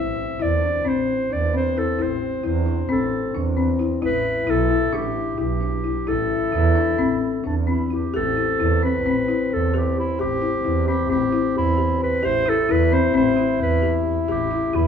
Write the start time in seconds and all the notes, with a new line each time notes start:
Already playing: A1 C4 E4 E5
0.40 E2 E4 D5
0.62 D4
0.85 A1 C4 C5
1.30 E2 D4 D5
1.53 C4 C5
1.77 E4 A4
1.99 A1 E4 C5
2.44 E2 E4 C5
2.66 D4
2.89 A1 C4 A4
3.34 E2 D4
3.57 C4
3.79 E4
4.01 A1 E4
4.05 B4
4.47 B1 E4 A4
4.70 E4
4.93 A1 D4 G4
5.38 B1 E4 G4
5.61 D4
5.84 E4
6.07 A1 E4 A4
6.52 E2 E4
6.75 D4
6.98 A1 C4
7.44 E2 D4
7.67 C4 E4
7.90 E4 G4
8.13 A1 C4 G4 A4
8.37 E4
8.60 E2 E4
8.83 C4 B4
9.04 A1 C4
9.28 E4
9.51 E2 A4
9.74 G4
9.99 E4
10.19 A1 G4
10.42 E4
10.65 E2 E4
10.88 C4 G4
11.10 A1 C4 G4
11.33 E4
11.56 E2 E4
11.77 G4
12.03 B4
12.23 A1 E4 G4 C5
12.46 E4 A4
12.69 E2 E4 B4
12.92 C4 C5
13.14 A1 C4 C5
13.37 E4
13.60 E2 B4
13.82 G4
14.28 A1 G4
14.51 E4
14.73 E2 E4